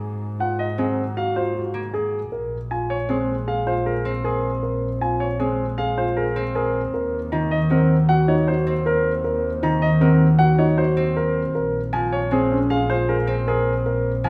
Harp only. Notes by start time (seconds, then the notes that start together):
Already playing: F#3 A#3 C4
0.78 F#3
1.74 A#3
3.09 G#3
4.05 C4
5.40 G#3
6.36 C4
7.32 D#3
7.70 F#3
8.67 C4
9.63 D#3
10.01 F#3
10.97 C4
11.93 F3
12.31 G#3
13.27 C4
14.24 F3